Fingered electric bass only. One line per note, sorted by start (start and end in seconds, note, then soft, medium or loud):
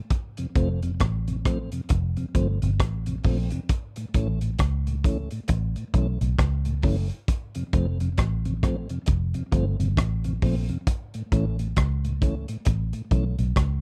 0.56 0.98 F1 medium
1.01 1.68 A1 medium
1.90 2.15 F1 medium
2.35 2.60 G1 medium
2.63 2.79 G1 medium
2.80 3.22 A1 medium
3.25 3.50 A#1 medium
4.15 4.56 A1 medium
4.60 5.27 C#2 medium
5.50 5.74 A1 medium
5.94 6.19 B1 medium
6.21 6.38 B1 medium
6.39 6.81 C#2 medium
6.84 7.09 F#1 medium
7.74 8.15 F1 medium
8.19 8.86 A1 medium
9.08 9.33 F1 medium
9.53 9.78 G1 medium
9.80 9.96 G1 medium
9.98 10.39 A1 medium
10.43 10.68 A#1 medium
11.32 11.74 A1 medium
11.77 12.45 C#2 medium
12.67 12.92 A1 medium
13.11 13.36 B1 medium
13.39 13.55 B1 medium
13.57 13.81 C#2 medium